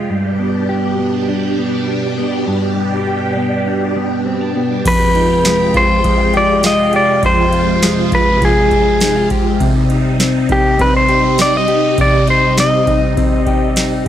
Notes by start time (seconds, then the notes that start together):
Already playing: G#3 F4 G4
0.10 G2 B2 G3 D4 G4
0.39 B3
0.69 G4
0.99 B3
1.29 D4
1.59 B3
1.88 D4
2.18 B3
2.47 G2
2.77 B3
3.07 G4
3.37 B3
3.67 D4
3.96 B3
4.26 C4
4.41 D4
4.56 B3
4.85 F2 C3 G#3 F4 B4 G5, kick, crash, ride
5.15 D#4, ride
5.30 F4
5.45 G#3, snare, ride, tambourine
5.74 F4 C5, kick, ride
6.04 G#3, kick, ride
6.34 G4 D5, ride
6.63 F4 D#5, snare, ride, tambourine
6.93 G4 D5, ride
7.23 F2 C5, kick, ride
7.52 F4, ride
7.82 G#3, snare, ride, tambourine
8.12 F4 B4, kick, ride
8.42 G#3 G#4, kick, ride
8.71 kick, ride
9.00 D#4, snare, ride, tambourine
9.16 F4
9.30 G4, kick, ride
9.60 C3 G3 D#4, kick, ride
9.90 D#4, ride
10.20 C4, snare, ride, tambourine
10.49 D#4 G4, kick, ride
10.79 C4 B4, kick, ride
10.97 C5
11.09 G4, ride
11.38 D#4 D5, snare, ride, tambourine
11.57 D#5
11.68 G4, ride
11.98 C3 D5, kick, ride
12.27 D#4 C5, ride
12.57 C4 D#5, snare, ride, tambourine
12.87 D#4, kick, ride
13.17 C4, kick, ride
13.46 G4, kick, ride
13.76 D#4, snare, ride, tambourine